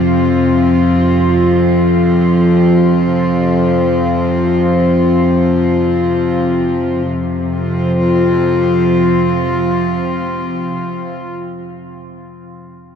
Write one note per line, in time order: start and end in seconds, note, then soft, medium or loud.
0.00 7.05 F2 medium
0.00 7.04 C3 medium
0.00 7.06 F3 medium
0.00 7.07 C4 medium
0.00 7.06 F4 medium
7.05 10.80 F2 medium
7.05 10.79 C3 medium
7.05 10.81 F3 medium
7.25 10.99 F3 medium
7.39 11.13 C4 medium
7.54 11.28 F4 medium